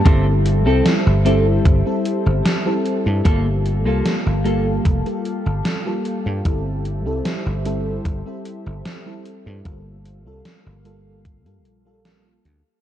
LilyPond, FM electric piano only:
\new Staff \with { instrumentName = "FM electric piano" } { \time 4/4 \key a \phrygian \tempo 4 = 75 <g c' e' a'>8. <g c' e' a'>8 r16 <g c' e' a'>8. <g c' e' a'>4 <g c' e' a'>8. | <g bes f' a'>8. <g bes f' a'>8 r16 <g bes f' a'>8. <g bes f' a'>4 <g bes f' a'>8. | <g c' e' a'>8. <g c' e' a'>8 r16 <g c' e' a'>8. <g c' e' a'>4 <g c' e' a'>8. | <g bes f' a'>8. <g bes f' a'>8 r16 <g bes f' a'>8. <g bes f' a'>8 <g bes f' a'>16 <g bes f' a'>8 r8 | }